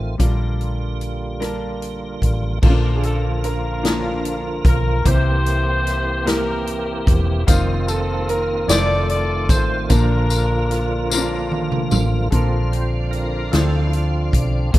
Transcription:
Already playing: A1 D#3 A3 C4 D#4 F4 G4
0.18 A#1 A#2 D3 G3 A#3 D4 F4 G4 A#4, kick, closed hi-hat
0.61 closed hi-hat
1.01 closed hi-hat
1.40 G3 D4 F4 A#4 A5, cross-stick, closed hi-hat
1.82 closed hi-hat
2.22 A1, kick, closed hi-hat
2.62 A#1 A#2 D3 F3 A#3 C#4 D4 D#4 F4 A4, kick, crash
2.69 D4 F4
2.96 G#4
3.03 A4, closed hi-hat
3.44 D4 F4 A#4, closed hi-hat
3.83 A#3 D4 F4 A#4, snare, closed hi-hat
4.25 A#4, closed hi-hat
4.65 B1 A#4, kick, closed hi-hat
5.04 C2 C3 E3 A#3 C4 E4 G4 C5, kick, closed hi-hat
5.46 closed hi-hat
5.87 snare, closed hi-hat
6.25 A#3 E4 G4 A#4, snare, closed hi-hat
6.67 closed hi-hat
7.07 E1, kick, closed hi-hat
7.46 F1 D#3 A#3 C4 D#4 F4 C5, kick, closed hi-hat, tambourine
7.88 A4, closed hi-hat, tambourine
8.22 A4
8.28 A#4, closed hi-hat
8.67 F1 D#3 G3 A3 C4 D#4 F4 A4 C5 D5, snare, closed hi-hat, tambourine
8.74 A3
9.09 D5, closed hi-hat
9.49 A1 C5, kick, closed hi-hat, tambourine
9.89 A#1 A#2 D3 F3 A#3 D4 F4 A4 A#4, kick, closed hi-hat, tambourine
9.99 A#4
10.30 closed hi-hat, tambourine
10.71 snare, closed hi-hat
11.10 A#3 C4 F4 A#4, snare, tambourine
11.17 D4
11.51 high tom
11.72 mid tom
11.91 A1, mid tom, tambourine
12.31 A#1 A#2 D3 F3 C4 D4 F4 A4 A#4 D5 F5, kick, closed hi-hat
12.72 C5, closed hi-hat
13.11 A#4, closed hi-hat
13.52 D2 A3 D4 F4 A4 C5, snare, closed hi-hat
13.86 E4
13.91 F4, closed hi-hat
14.31 B1 D4, kick, closed hi-hat
14.51 D4
14.71 C2 C3 E3 A#3 C4 D4 E4 G4 C5 E5, kick, closed hi-hat

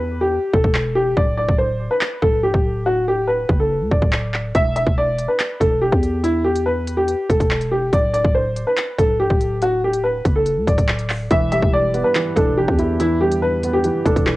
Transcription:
Already playing: E2 B4, downlifter
0.21 G4
0.53 E1 A4, kick
0.64 E1, kick
0.75 clap
0.95 G4
1.17 D1 D5, kick
1.37 D5
1.48 D1, kick
1.58 C5
1.91 B4
2.01 clap
2.22 D1 A4, kick
2.43 C1 G4
2.54 D1, kick
2.86 F#4
3.08 G4
3.28 B4
3.49 F#1, kick
3.60 A4
3.81 D2
3.91 D1 D5, kick
4.02 D1, kick
4.13 clap
4.34 clap
4.55 E1 E5, kick, closed hi-hat
4.76 E5, closed hi-hat
4.86 E1, kick
4.98 D5
5.18 closed hi-hat
5.28 B4
5.39 clap, closed hi-hat
5.60 E1 A4, kick, closed hi-hat
5.81 G4
5.92 E2, kick
6.03 closed hi-hat
6.24 E4, closed hi-hat
6.44 G4
6.56 closed hi-hat
6.66 B4
6.87 closed hi-hat
6.97 G4
7.08 closed hi-hat
7.30 E1 A4, kick, closed hi-hat
7.40 E1, kick, closed hi-hat
7.51 clap
7.61 closed hi-hat
7.71 G4
7.93 D1 D5, kick, closed hi-hat
8.14 D5, closed hi-hat
8.25 D1, kick
8.35 C5
8.56 closed hi-hat
8.67 B4
8.77 clap, closed hi-hat
8.98 D1 A4, kick, closed hi-hat
9.19 C1 G4
9.30 D1, kick
9.41 closed hi-hat
9.62 F#4, closed hi-hat
9.84 G4
9.93 closed hi-hat
10.04 B4
10.25 F#1, kick, closed hi-hat
10.36 A4
10.46 closed hi-hat
10.57 D2
10.67 D1 D5, kick, closed hi-hat
10.78 D1, kick, closed hi-hat
10.89 clap
10.99 closed hi-hat
11.10 clap, open hi-hat
11.31 E1 E3 E5, kick, closed hi-hat
11.52 G3 E5, closed hi-hat
11.62 E1, kick
11.73 D5
11.94 B3, closed hi-hat
12.04 B4
12.15 E3, clap, closed hi-hat
12.36 E1 D4 A4, kick, closed hi-hat
12.57 E3 G4
12.68 E2, kick
12.79 E4, closed hi-hat
13.00 E3 E4, closed hi-hat
13.21 G3 G4
13.32 closed hi-hat
13.42 B4
13.63 B3, closed hi-hat
13.73 G4
13.84 E3, closed hi-hat
14.06 E1 D4 A4, kick, closed hi-hat
14.16 E1, kick, closed hi-hat
14.26 E3, clap

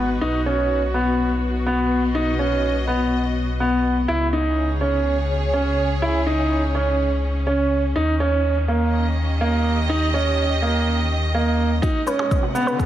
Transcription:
Already playing: G#1 G#3 D#4 F#4 B4
0.21 B1 B2 D#4
0.33 B3
0.46 C#4
0.94 B3
1.66 B3
1.97 D#5
2.15 D#4
2.39 C#4
2.88 B3
3.60 B3
4.08 C#2 C#3 E4
4.33 D#4
4.37 G#4
4.45 C#5
4.81 C#4
5.53 C#4
6.02 E4
6.27 D#4
6.75 C#4
7.47 C#4
7.96 D#2 D#3 D#4
8.20 C#4
8.68 A#3
8.88 D#5
9.05 G4
9.41 A#3
9.90 D#4
10.14 C#4
10.62 A#3
11.35 A#3
11.82 G#1 D#4 F#4, kick, riser, shaker
12.07 C#4 B4, shaker
12.19 G#4, percussion blips
12.26 B4
12.31 D#5 F#5, kick, shaker
12.43 F#4
12.54 B3 D#4, shaker
12.67 B4, shaker
12.79 G#4, kick, shaker

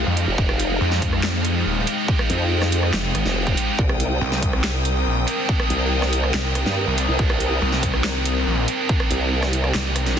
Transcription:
Already playing: G#3 C4 D#4 G4 F5 D#6
0.06 F2
0.17 G#3 C4 D#4 G4, closed hi-hat
0.28 F1
0.38 F1, kick
0.49 cross-stick
0.60 closed hi-hat
0.81 F2
0.92 snare
1.02 kick, closed hi-hat
1.13 G5, cross-stick
1.23 snare, clap
1.45 closed hi-hat
1.66 D#1
1.87 G#3 C4 D#4 G4, closed hi-hat
2.08 kick
2.19 cross-stick
2.30 F2, closed hi-hat
2.62 cross-stick, snare
2.72 closed hi-hat
2.83 cross-stick
2.94 F1, snare, clap
3.15 G#1, cross-stick, closed hi-hat
3.26 F1, snare
3.46 G#3 C4 D#4 G4, kick
3.57 closed hi-hat
3.79 C2 C4 A#4 D#6, kick
3.89 cross-stick
4.00 closed hi-hat
4.10 A#4
4.21 C2
4.32 snare
4.42 kick, closed hi-hat
4.53 cross-stick
4.64 snare, clap
4.85 closed hi-hat
5.06 A#1
5.27 D#3 G3 A#3 D4, closed hi-hat
5.49 kick
5.60 cross-stick
5.70 C2, closed hi-hat
6.02 cross-stick, snare
6.13 closed hi-hat
6.23 cross-stick
6.34 C2, snare, clap
6.55 cross-stick, closed hi-hat
6.66 G2, snare
6.87 C2
6.98 D#3 G3 A#3 D4, closed hi-hat
7.09 C2
7.19 C2, kick
7.30 cross-stick
7.40 closed hi-hat
7.62 C2
7.72 snare
7.83 kick, closed hi-hat
7.94 cross-stick
8.04 snare, clap
8.25 closed hi-hat
8.47 A#1
8.68 D#3 G3 A#3 D4, closed hi-hat
8.89 kick
9.00 cross-stick
9.11 C2, closed hi-hat
9.43 cross-stick, snare
9.53 closed hi-hat
9.64 cross-stick
9.74 C2, snare, clap
9.96 cross-stick, closed hi-hat
10.06 snare, closed hi-hat

